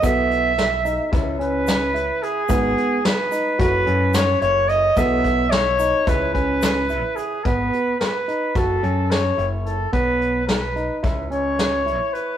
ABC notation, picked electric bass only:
X:1
M:9/8
L:1/8
Q:3/8=73
K:Bmix
V:1 name="Picked electric bass" clef=bass
B,,,4 C,,4 z | G,,, z3 F,,, F,,2 F,,,2 | B,,,4 C,,4 z | G,,, z3 F,,, F,,2 F,,,2 |
B,,,4 C,,4 z |]